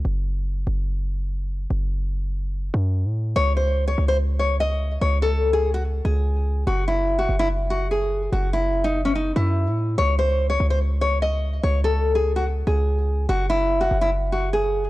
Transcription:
<<
  \new Staff \with { instrumentName = "Nylon-string guitar" } { \time 4/4 \key cis \minor \tempo 4 = 145 r1 | r1 | cis''8 bis'8. cis''8 bis'16 r8 cis''8 dis''4 | cis''8 a'8. gis'8 fis'16 r8 gis'4. |
fis'8 e'8. fis'8 e'16 r8 fis'8 gis'4 | fis'8 e'8. dis'8 cis'16 dis'8 e'4. | cis''8 bis'8. cis''8 bis'16 r8 cis''8 dis''4 | cis''8 a'8. gis'8 fis'16 r8 gis'4. |
fis'8 e'8. fis'8 e'16 r8 fis'8 gis'4 | }
  \new Staff \with { instrumentName = "808-style bass" } { \clef bass \time 4/4 \key cis \minor fis,,4. fis,,2~ fis,,8 | fis,,2~ fis,,8 fis,8. a,8. | cis,4. cis,2~ cis,8 | cis,2~ cis,8 cis,4. |
fis,,4. fis,,2~ fis,,8 | fis,,2~ fis,,8 fis,8. a,8. | cis,4. cis,2~ cis,8 | cis,2~ cis,8 cis,4. |
fis,,4. fis,,2~ fis,,8 | }
>>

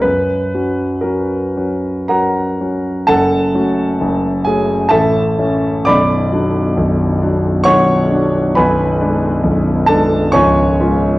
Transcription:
<<
  \new Staff \with { instrumentName = "Grand piano" } { \time 3/4 \key fis \major \tempo 4 = 66 b'4 ais'4 <ais' fis'' ais''>4 | \key fis \minor <a' fis'' a''>4. <gis' gis''>8 <a' e'' a''>4 | <d'' b'' d'''>4. r8 <cis'' fis'' cis'''>4 | <b' gis'' b''>4. <a' a''>8 <cis'' gis'' cis'''>4 | }
  \new Staff \with { instrumentName = "Grand piano" } { \clef bass \time 3/4 \key fis \major fis,8 <fis cis' fis'>8 <fis cis' fis'>8 <fis cis' fis'>8 <fis cis' fis'>8 <fis cis' fis'>8 | \key fis \minor <fis,, fis,>8 <a cis' fis'>8 <fis,, fis,>8 <a cis' fis'>8 <a,, a,>8 <a cis' e'>8 | <b,,, b,,>8 <fis d'>8 <b,,, b,,>8 <fis d'>8 <b,,, b,,>8 <fis d'>8 | <b,,, b,,>8 <gis d'>8 <b,,, b,,>8 <gis d'>8 <cis,, cis,>8 <gis cis' eis'>8 | }
>>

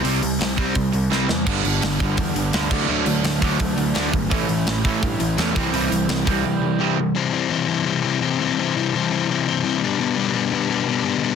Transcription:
<<
  \new Staff \with { instrumentName = "Overdriven electric guitar" } { \clef bass \time 4/4 \key c \lydian \tempo 4 = 169 <c g c'>8 <c g>8 <c g>8 <c g c'>8 <c g>8 <c g>8 <c g c'>8 <c g>8 | <g, d g>8 <g, d>8 <g, d>8 <g, d g>8 <g, d>8 <g, d>8 <g, d g>8 <d fis a>8 | <d fis a>8 <d fis>8 <d fis>8 <d fis a>8 <d fis>8 <d fis>8 <d fis a>8 <d fis>8 | <a, e a>8 <a, e>8 <a, e>8 <a, e a>8 <a, e>8 <a, e>8 <a, e a>8 <c e g>8 |
<c e g>8 <c e>8 <c e>8 <c e g>8 <c e>8 <c e>8 <c e g>8 <c e>8 | <c e g c' e' c''>8 <c e g c' e' c''>8 <c e g c' e' c''>8 <c e g c' e' c''>8 <c e g c' e' c''>8 <c e g c' e' c''>8 <c e g c' e' c''>8 <c e g c' e' c''>8 | <c e g c' e' c''>8 <c e g c' e' c''>8 <c e g c' e' c''>8 <c e g c' e' c''>8 <c e g c' e' c''>8 <c e g c' e' c''>8 <c e g c' e' c''>8 <b, g b d' g' b'>8 | <b, g b d' g' b'>8 <b, g b d' g' b'>8 <b, g b d' g' b'>8 <b, g b d' g' b'>8 <b, g b d' g' b'>8 <b, g b d' g' b'>8 <b, g b d' g' b'>8 <b, g b d' g' b'>8 | }
  \new Staff \with { instrumentName = "Overdriven electric guitar" } { \clef bass \time 4/4 \key c \lydian r1 | <g, d g b d'>2 <g, d g b d'>4. <d fis a d'>8~ | <d fis a d'>4. <d fis a d'>2 r8 | <a, e a cis' e'>2 <a, e a cis' e'>4. <c e g c' e'>8~ |
<c e g c' e'>4. <c e g c' e'>2 r8 | r1 | r1 | r1 | }
  \new Staff \with { instrumentName = "Overdriven electric guitar" } { \clef bass \time 4/4 \key c \lydian <c g c'>8 <c g>8 <c g>8 <c g c'>8 <c g>8 <c g>8 <c g c'>8 <c g>8 | <g, d g>8 <g, d>8 <g, d>8 <g, d g>8 <g, d>8 <g, d>8 <g, d g>8 <d a d'>8 | <d a d'>8 <d a>8 <d a>8 <d a d'>8 <d a>8 <d a>8 <d a d'>8 <d a>8 | <a, e a>8 <a, e>8 <a, e>8 <a, e a>8 <a, e>8 <a, e>8 <a, e a>8 <c g c'>8 |
<c g c'>8 <c g>8 <c g>8 <c g c'>8 <c g>8 <c g>8 <c g c'>8 <c g>8 | r1 | r1 | r1 | }
  \new Staff \with { instrumentName = "Picked electric bass" } { \clef bass \time 4/4 \key c \lydian c,8 c,8 c,8 c,8 c,8 c,8 c,8 e,8 | g,,8 g,,8 g,,8 g,,8 e,8 g,,8 d,8 d,8 | d,8 d,8 d,8 d,8 d,8 d,8 d,8 g,,8 | a,,8 a,,8 a,,8 a,,8 g,8 a,,8 e,8 c,8 |
c,8 c,8 c,8 c,8 r2 | r1 | r1 | r1 | }
  \new DrumStaff \with { instrumentName = "Drums" } \drummode { \time 4/4 hho8 hho8 <hho sn>8 bd8 <hho bd>8 hho8 sn8 sn8 | <cymc bd>8 hho8 <hho sn>8 <hho bd>8 <hho bd>8 hho8 <hho sn>8 <cymc bd>8 | r8 hho8 <hho sn>8 <hho bd>8 <hho bd>8 hho8 <hho sn>8 <hho bd>8 | <hho bd>8 hho8 <hho sn>8 <hho bd>8 <hho bd>8 hho8 <hho sn>8 <hho bd>8 |
hho8 hho8 <hho sn>8 <hho bd>8 r4 r4 | r4 r4 r4 r4 | r4 r4 r4 r4 | r4 r4 r4 r4 | }
>>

